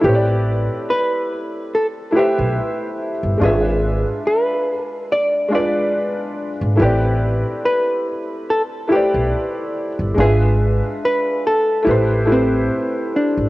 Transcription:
X:1
M:4/4
L:1/16
Q:"Swing 16ths" 1/4=71
K:Am
V:1 name="Hollow-body jazz guitar"
G4 B4 A2 G4 z2 | ^G4 B4 d2 d4 z2 | G4 B4 A2 G4 z2 | ^G4 B2 A4 C4 D2 |]
V:2 name="Felt piano"
[A,CEGB^cd]6 z4 [A,EGB=ce]4 z2 | [^G,DFBe]6 z4 [G,DFBd]4 z2 | [A,CEGBd]6 z4 [A,EGBcd]4 z2 | [^G,DFBe]6 z2 [A,E=GBc]2 [A,EGBc]4 z2 |]
V:3 name="Upright bass" clef=bass
A,,,3 z8 B,,, z3 G,,, | ^G,,,3 z12 G,,, | A,,,3 z8 B,,, z3 G,,, | ^G,,,3 z4 z A,,,4 z3 G,,, |]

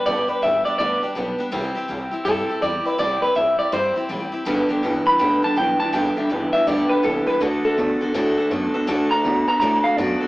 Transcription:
X:1
M:4/4
L:1/8
Q:"Swing" 1/4=163
K:G
V:1 name="Clean electric guitar"
d B e d d z3 | z4 A2 d B | d B e d c z3 | z3 b2 a g a |
g e d e d B A B | A A2 z4 z | z _b2 b b =f d2 |]
V:2 name="Steel-string acoustic guitar"
[G,,D,G,B,DG] [G,B,DG] [G,B,DG] [G,B,DG] [G,,D,G,B,DG] [G,B,DG] [G,B,DG] [G,B,DG] | [C,G,CEG] [CEG] [G,CEG] [CEG] [C,G,CEG] [CEG] [G,CEG] [CEG] | [C,G,CEG] [CEG] [G,CEG] [CEG] [C,G,CEG] [CEG] [G,CEG] [CEG] | [G,,D,G,B,DG] [G,B,DG] [G,B,DG] [G,B,DG] [G,,D,G,B,DG] [G,B,DG] [G,B,DG] [G,B,DG] |
[G,,D,G,B,DG] [G,B,DG] [G,B,DG] [G,B,DG] [G,,D,G,B,DG] [G,B,DG] [G,B,DG] [G,B,DG] | [D,A,DFA] [DFA] [A,DFA] [DFA] [D,A,DFA] [DFA] [A,DFA] [DFA] | [D,A,DFA] [DFA] [A,DFA] [DFA] [D,A,DFA] [DFA] [A,DFA] [DFA] |]
V:3 name="Clean electric guitar" clef=bass
z8 | z8 | z8 | [G,,D,] [G,,D,] [G,,E,] [G,,E,] [G,,D,] [G,,D,] [G,,E,] [G,,E,] |
[G,,D,] [G,,D,] [G,,E,] [G,,E,] [G,,D,] [G,,D,] [G,,E,] [G,,E,] | [D,A,] [D,A,] [D,B,] [D,B,] [D,A,] [D,A,] [D,B,] [D,B,] | [D,A,] [D,A,] [D,B,] [D,B,] [D,A,] [D,A,] [D,B,] [D,B,] |]
V:4 name="Upright bass" clef=bass
G,,, z G,,, z D,, z B,,, z | C,, z C,, z G,, z E,, z | C,, z C,, z G,, z A,,, z | G,,, z G,,, z D,, z B,,, z |
G,,, z G,,, z D,, z C,, z | D,, z D,, z A,, z F,, z | D,, z D,, z A,, z F,, z |]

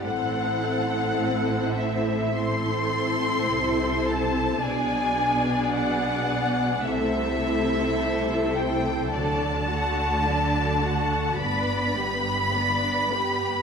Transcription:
X:1
M:4/4
L:1/8
Q:1/4=53
K:Ador
V:1 name="Violin section"
f3 e c'3 a | ^g2 f2 e3 =g | a4 b4 |]
V:2 name="Violin section"
[Ac]4 [Ac]4 | [^Gd]4 [Ac]4 | [Ad] [Ff] [Ad] [Ff] [Bd] [GB] [Bd] [GB] |]
V:3 name="Viola section"
[CE]4 [CE]4 | [B,D]4 [A,E]4 | [F,D] [A,F] [F,D] [A,F] [B,D] [G,B,] [B,D] [G,B,] |]
V:4 name="Cello section" clef=bass
A,,6 C,2 | B,,4 C,4 | D,4 G,,4 |]
V:5 name="Double bass section" clef=bass
A,,,6 C,,2 | B,,,4 C,,4 | D,,4 G,,,4 |]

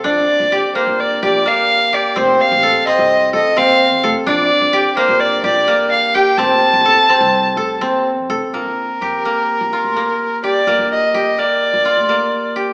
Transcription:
X:1
M:9/8
L:1/16
Q:3/8=85
K:Bb
V:1 name="Violin"
d6 c2 d2 d2 f4 d2 | c2 f4 e4 e2 f4 z2 | d6 c2 d2 d4 f2 g2 | a12- a2 z4 |
B16 d2- | d2 e4 d8- d2 z2 |]
V:2 name="Koto"
D4 G2 B,4 G2 B,4 G2 | C4 A2 C4 A2 C4 A2 | D4 G2 B,4 G2 B,4 G2 | C4 A2 C4 A2 C4 A2 |
B,4 G2 B,4 F2 B,4 G2 | B,4 G2 B,4 F2 B,4 G2 |]
V:3 name="Upright bass" clef=bass
B,,,2 z B,,,2 z2 B,,,3 B,,,2 z6 | F,,,2 z A,,,2 z2 C,,3 F,,,2 E,,3 F,, F,,, z | B,,,2 z B,,,2 z2 B,,,3 B,,,2 z6 | F,,,2 z A,,,2 z2 C,,3 F,,,2 E,,3 F,, F,,, z |
B,,, B,,,2 z F,,2 z3 B,,, z D,,2 z4 z | B,,, B,,,2 z F,,2 z3 B,,, z D,,2 z4 z |]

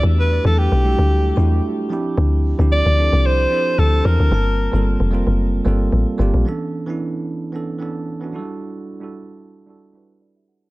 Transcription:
X:1
M:4/4
L:1/16
Q:"Swing 16ths" 1/4=112
K:Bm
V:1 name="Alto saxophone"
z B2 A G8 z4 | z4 d4 =c4 A2 ^A2- | ^A4 z12 | z16 |
z16 |]
V:2 name="Tine electric piano"
[A,DEFG]2 z [F,A,DEA]2 z [G,A,DEFG]3 z [A,DEFG]3 z [=F,=CDEG]2- | [=F,=CDEG]2 z [F,CDEG]2 z [F,CDEA]3 z [F,CDEA]3 z [F,CDEA]2 | [G,_B,=C=Fa]2 z [G,B,CFA]2 z [G,B,CF_B]3 z [G,B,CFA]3 z [G,B,CFG]2 | [E,B,CDA]2 z [E,B,CDE]4 z [E,B,CDA]2 [E,B,CDA]2 z [E,B,CDF] [F,G,DEFA]2- |
[F,G,DEFA]2 z [G,DEFA]4 z [G,DEFA]2 [G,DEFB]2 d [Ge] [Af] [ca] |]
V:3 name="Log drum bass" clef=bass
E,,3 E,,2 B,,,2 D,,3 E,,2 z4 | D,,3 D,,2 D,,2 =C,,3 z2 D,,2 E,, D,, | G,,,3 G,,,2 =F,,,2 ^F,,,3 G,,,2 A,,, z G,,, _B,,, | z16 |
z16 |]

